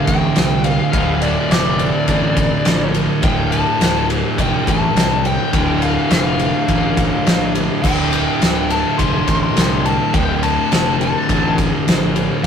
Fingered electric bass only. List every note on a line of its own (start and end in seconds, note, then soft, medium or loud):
0.07 0.28 A1 loud
0.37 0.77 C2 loud
0.94 1.35 D1 loud
1.50 1.91 F1 loud
2.08 2.49 A1 medium
2.66 3.07 A#1 loud
3.23 3.64 D1 medium
3.81 4.22 D1 medium
4.38 4.59 F1 medium
4.68 4.88 A1 loud
4.95 5.36 C2 loud
5.54 5.94 D1 medium
6.10 6.51 F1 loud
6.69 7.09 A1 medium
7.26 7.67 A#1 loud
7.84 8.25 D1 medium
8.41 8.82 D1 medium
8.99 9.20 F1 loud
9.28 9.48 A1 medium
9.56 9.97 C2 medium
10.14 10.55 D1 medium
10.72 11.13 F1 medium
11.29 11.70 A1 loud
11.87 12.28 A#1 loud